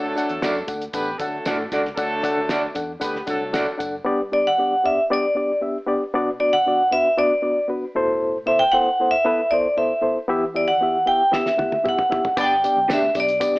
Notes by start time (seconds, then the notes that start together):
Already playing: D2 D3 F#3 A3 D4 A4
0.16 D4 A4 F#5, closed hi-hat, tambourine
0.29 E2, closed hi-hat
0.41 F#2 D4 F#4 A4 D5 F#5, snare, closed hi-hat, tambourine
0.67 D2 D4 A4 F#5, kick, closed hi-hat, tambourine
0.82 closed hi-hat
0.93 A1 B3 D4 G4 A4 B4 F#5, kick, closed hi-hat, tambourine
1.18 D3 F#3 A3 D4 A4 F#5, kick, closed hi-hat, tambourine
1.45 A2 D4 F#4 A4 D5 F#5, snare, closed hi-hat, tambourine
1.72 C#2 D4 F#4 A4 D5 F#5, kick, closed hi-hat, tambourine
1.85 snare
1.96 D2 D3 F#3 A3 D4 A4 F#5, kick, closed hi-hat, tambourine
2.23 D4 A4 F#5, kick, closed hi-hat, tambourine
2.37 D2
2.49 D4 F#4 A4 D5 F#5, snare, closed hi-hat, tambourine
2.75 E2 D4 A4 F#5, kick, closed hi-hat, tambourine
3.00 D2 B3 D4 G4 A4 B4 F#5, kick, closed hi-hat, tambourine
3.16 snare
3.27 C2 F#3 A3 D4 A4 F#5, kick, closed hi-hat, tambourine
3.53 D4 F#4 A4 D5 F#5, snare, closed hi-hat, tambourine
3.78 F#1 D4 A4 F#5, kick, closed hi-hat, tambourine
4.05 G2 B3 D4 G4 D5
4.32 B3 D4 G4 D5
4.47 F#5
4.58 B3 D4 G4 D5
4.84 B3 D4 G4 D5 E5
5.10 B3 D4 G4 D5
5.35 B3 D4 G4 D5
5.61 B3 D4 G4 E5
5.86 B3 D4 G4 D5
6.14 B2 B3 D4 F#4 D5
6.40 B3 D4 F#4 D5
6.53 F#5
6.66 B3 D4 F#4 D5
6.91 B3 D4 F#4 B4 E5
7.18 B3 D4 F#4 D5
7.42 B3 D4 F#4 D5
7.68 B3 D4 F#4 B4
7.95 A2 B2 E4 A4 C5
8.46 B3 E4 A4 C5 E5
8.59 G5
8.72 B3 E4 A4 C5 F#5
9.00 B3 E4 A4 C5
9.11 E5
9.25 B3 E4 A4 B4
9.51 B3 E4 A4 C5 D5
9.77 B3 E4 A4 C5 E5
10.01 B3 E4 A4 C5
10.28 E3 B3 E4 G4 E5
10.54 B3 E4 G4 D5 E5
10.68 F#5
10.81 B3 E4 G4 E5
11.06 B3 E4 G4 E5 G5
11.32 B3 E4 G4 E5, snare
11.46 snare
11.57 B3 E4 G4 F#5, high tom
11.72 high tom
11.84 B3 E4 G4 E5, mid tom
11.89 F#5
11.99 mid tom
12.09 B3 E4 G4 E5, floor tom
12.25 floor tom
12.37 G1 G2 B3 D4 G4 D5, kick, closed hi-hat, tambourine
12.41 G5
12.64 B3 D4 G4 D5, closed hi-hat, tambourine
12.77 B1
12.88 D2 B3 D4 G4 B4 D5, snare, closed hi-hat, tambourine
12.93 E5
13.15 B1 B3 D4 G4 D5, kick, closed hi-hat, tambourine
13.20 D5
13.28 closed hi-hat
13.40 B3 D4 G4 D5, kick, closed hi-hat, tambourine
13.55 snare